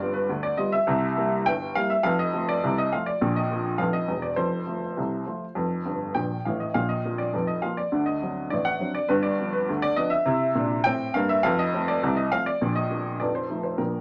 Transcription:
0.00 0.30 G1 medium
0.00 0.31 G2 medium
0.00 0.16 G3 soft
0.00 0.17 B3 soft
0.00 0.17 F4 medium
0.00 0.14 D5 medium
0.14 0.43 B4 medium
0.29 0.54 D2 medium
0.29 0.54 D3 medium
0.43 0.58 D5 medium
0.57 0.74 G3 medium
0.57 0.74 B3 soft
0.57 0.75 F4 medium
0.57 0.72 D#5 medium
0.72 1.17 E5 medium
0.87 1.12 C2 medium
0.87 1.12 C3 medium
1.17 1.33 G3 soft
1.17 1.33 A#3 soft
1.17 1.34 E4 medium
1.46 1.71 G1 medium
1.46 1.71 G2 medium
1.46 1.75 G5 loud
1.75 1.92 G3 soft
1.75 1.92 A#3 medium
1.75 1.93 E4 medium
1.75 1.90 F5 loud
1.90 2.04 E5 medium
2.03 2.29 F1 medium
2.03 2.29 F2 medium
2.03 2.18 F5 loud
2.19 2.48 D#5 medium
2.33 2.50 F3 soft
2.33 2.50 A3 soft
2.33 2.50 F4 soft
2.49 2.78 D5 medium
2.64 2.88 C2 medium
2.64 2.89 C3 medium
2.78 2.93 D#5 medium
2.93 3.09 F3 soft
2.93 3.09 A3 soft
2.93 3.09 F4 medium
2.93 3.07 F5 medium
3.06 3.36 D5 medium
3.21 3.46 A#1 medium
3.21 3.46 A#2 medium
3.36 3.80 D#5 medium
3.51 3.67 F3 soft
3.51 3.67 A#3 soft
3.51 3.67 F4 soft
3.78 4.04 F1 medium
3.78 4.04 F2 medium
3.78 3.94 F5 medium
3.93 4.23 D#5 medium
4.08 4.32 E1 medium
4.08 4.32 E2 medium
4.22 4.38 D5 medium
4.36 4.63 F1 medium
4.36 4.63 F2 medium
4.36 6.15 C5 medium
4.67 4.83 F3 soft
4.67 4.84 A3 soft
4.67 4.84 F4 soft
4.97 5.23 C2 medium
4.97 5.22 C3 medium
5.26 5.43 F3 soft
5.26 5.43 A3 soft
5.26 5.44 F4 soft
5.55 5.81 F1 medium
5.55 5.81 F2 medium
5.85 6.08 G1 medium
5.85 6.08 G2 medium
6.15 6.38 A#1 medium
6.15 6.38 A#2 medium
6.15 6.45 G5 medium
6.45 6.68 A1 medium
6.45 6.68 A2 medium
6.45 6.60 F5 medium
6.60 6.75 D#5 medium
6.74 7.00 A#1 medium
6.74 7.00 A#2 medium
6.74 6.89 F5 medium
6.89 7.19 D#5 medium
7.05 7.21 F3 soft
7.05 7.21 A#3 soft
7.05 7.21 F4 soft
7.18 7.48 D5 medium
7.33 7.59 F1 medium
7.33 7.59 F2 medium
7.47 7.63 D#5 medium
7.62 7.79 F3 soft
7.62 7.79 A#3 soft
7.62 7.80 F4 soft
7.62 7.77 F5 medium
7.77 8.07 D5 medium
7.92 8.17 D2 medium
7.92 8.17 D3 medium
8.06 8.51 D#5 medium
8.22 8.38 F#3 soft
8.22 8.39 C4 soft
8.22 8.39 D4 soft
8.50 8.76 A1 medium
8.50 8.76 A2 medium
8.50 8.65 D5 medium
8.65 8.95 F#5 medium
8.80 8.96 F#3 soft
8.80 8.97 C4 soft
8.80 8.97 D4 soft
8.95 9.09 D5 medium
9.09 9.34 G1 medium
9.09 9.34 G2 medium
9.09 9.24 B4 medium
9.23 9.53 D5 medium
9.39 9.55 F3 soft
9.39 9.56 B3 soft
9.39 9.56 D4 soft
9.53 9.83 B4 medium
9.69 9.93 D2 medium
9.69 9.93 D3 medium
9.82 9.97 D5 medium
9.96 10.13 F3 soft
9.96 10.14 B3 medium
9.96 10.14 D4 medium
9.96 10.12 D#5 medium
10.10 10.55 E5 medium
10.26 10.50 C3 medium
10.26 10.50 E4 medium
10.55 10.79 A#2 medium
10.55 10.80 D4 medium
10.84 11.08 A2 medium
10.84 11.09 C4 medium
10.84 11.14 G5 loud
11.14 11.38 G2 medium
11.14 11.39 A#3 medium
11.14 11.29 F5 medium
11.29 11.44 E5 medium
11.43 11.69 F1 medium
11.43 11.69 F2 loud
11.43 11.58 F5 loud
11.59 11.88 D#5 medium
11.74 11.90 F3 soft
11.74 11.90 A3 soft
11.74 11.90 C4 soft
11.88 12.17 D5 medium
12.03 12.28 C2 medium
12.03 12.28 C3 medium
12.16 12.31 D#5 medium
12.32 12.48 F3 soft
12.32 12.48 A3 soft
12.32 12.48 C4 medium
12.32 12.46 F5 loud
12.46 12.76 D5 medium
12.61 12.86 A#1 medium
12.61 12.86 A#2 medium
12.75 13.20 D#5 medium
12.90 13.06 F3 soft
12.90 13.07 A#3 soft
12.90 13.07 D4 soft
13.20 13.45 F1 medium
13.20 13.45 F2 medium
13.20 13.35 D5 medium
13.35 13.62 C5 medium
13.50 13.66 F3 soft
13.50 13.66 A3 soft
13.50 13.67 D#4 soft
13.63 13.79 C5 medium
13.78 14.01 A#1 medium
13.78 14.01 A#2 medium
13.78 14.01 A#4 medium

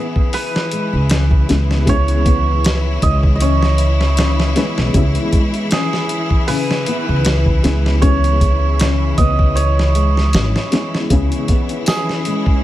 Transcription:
0.00 11.10 E3 medium
0.00 1.44 G#3 medium
0.00 0.32 B3 loud
0.00 1.45 B3 medium
0.00 1.45 C#4 medium
0.00 1.46 E4 loud
0.00 11.09 E4 medium
0.00 2.61 G#4 medium
0.16 kick medium
0.33 3.07 B4 loud
0.33 open hi-hat medium
0.56 snare medium
0.71 1.07 G#3 medium
0.71 closed hi-hat medium
0.93 1.46 C#2 medium
1.10 1.84 C#4 medium
1.10 snare loud
1.10 closed hi-hat medium
1.31 kick loud
1.49 3.00 C#2 medium
1.49 1.83 G#3 medium
1.49 1.83 B3 medium
1.49 1.84 C#4 medium
1.49 1.84 E4 medium
1.49 snare soft
1.49 closed hi-hat medium
1.71 snare soft
1.85 2.22 C#3 loud
1.85 4.51 G#3 medium
1.85 4.52 B3 medium
1.85 4.53 C#4 medium
1.85 4.53 E4 loud
1.85 kick loud
1.85 closed hi-hat medium
1.89 3.41 C#5 loud
2.08 closed hi-hat soft
2.25 2.63 B3 loud
2.25 kick medium
2.25 closed hi-hat medium
2.65 snare loud
2.65 closed hi-hat medium
3.02 4.53 C#2 medium
3.02 3.38 G#3 medium
3.02 3.12 D#5 loud
3.02 kick medium
3.02 closed hi-hat medium
3.23 kick medium
3.35 5.73 D#5 medium
3.41 4.15 C#4 medium
3.41 5.97 C#5 medium
3.41 closed hi-hat medium
3.63 snare soft
3.78 closed hi-hat medium
4.01 snare soft
4.17 4.53 C#3 loud
4.17 snare loud
4.17 closed hi-hat medium
4.40 snare medium
4.55 4.90 G#3 medium
4.55 4.90 B3 medium
4.55 4.93 B3 loud
4.55 4.91 C#4 medium
4.55 4.91 E4 medium
4.55 snare soft
4.55 closed hi-hat medium
4.78 4.93 B1 medium
4.78 snare medium
4.93 5.13 C#2 medium
4.93 7.59 G#3 medium
4.93 7.60 B3 medium
4.93 7.60 C#4 medium
4.93 7.61 E4 loud
4.93 kick loud
4.93 closed hi-hat medium
5.15 closed hi-hat soft
5.33 5.69 G#3 medium
5.33 kick medium
5.33 closed hi-hat medium
5.54 closed hi-hat soft
5.71 6.46 C#4 medium
5.71 8.76 G#4 medium
5.71 snare loud
5.71 closed hi-hat medium
5.93 snare soft
6.09 closed hi-hat medium
6.31 kick medium
6.48 6.84 C#3 loud
6.48 9.21 B4 loud
6.48 open hi-hat medium
6.71 snare medium
6.86 7.24 B3 loud
6.86 closed hi-hat medium
7.09 7.61 C#2 medium
7.25 snare loud
7.25 closed hi-hat medium
7.46 kick medium
7.63 9.15 C#2 medium
7.63 7.98 G#3 medium
7.63 8.00 G#3 medium
7.63 7.98 B3 medium
7.63 7.98 C#4 medium
7.63 7.99 E4 medium
7.63 snare medium
7.63 closed hi-hat medium
7.86 snare soft
8.01 10.67 G#3 loud
8.01 10.67 B3 medium
8.01 10.68 C#4 medium
8.01 8.76 C#4 medium
8.01 10.69 E4 loud
8.01 9.55 C#5 loud
8.01 kick loud
8.01 closed hi-hat medium
8.24 closed hi-hat soft
8.41 kick medium
8.41 closed hi-hat medium
8.80 9.15 C#3 loud
8.80 snare loud
8.80 closed hi-hat medium
9.18 10.33 C#2 medium
9.18 9.55 B3 loud
9.18 11.56 D#5 loud
9.18 kick loud
9.18 closed hi-hat medium
9.39 kick medium
9.55 12.10 C#5 loud
9.55 closed hi-hat medium
9.79 snare soft
9.95 10.30 G#3 medium
9.95 closed hi-hat medium
10.17 snare soft
10.33 10.52 G#1 medium
10.33 11.07 C#4 medium
10.33 snare loud
10.33 closed hi-hat medium
10.56 snare medium
10.71 11.06 G#3 medium
10.71 11.06 B3 medium
10.71 11.06 C#4 medium
10.71 11.07 E4 medium
10.71 snare soft
10.71 closed hi-hat medium
10.95 snare soft
11.09 11.29 C#2 medium
11.09 11.46 C#3 loud
11.09 12.63 E3 medium
11.09 12.63 G#3 medium
11.09 12.63 B3 medium
11.09 12.63 C#4 medium
11.09 12.63 E4 medium
11.09 kick loud
11.09 closed hi-hat medium
11.32 closed hi-hat soft
11.48 11.86 B3 loud
11.48 kick loud
11.48 closed hi-hat medium
11.69 closed hi-hat soft
11.86 12.63 G#4 medium
11.86 snare loud
11.86 closed hi-hat medium
11.86 tambourine medium
12.09 snare soft
12.25 12.61 G#3 medium
12.25 closed hi-hat medium
12.46 kick loud

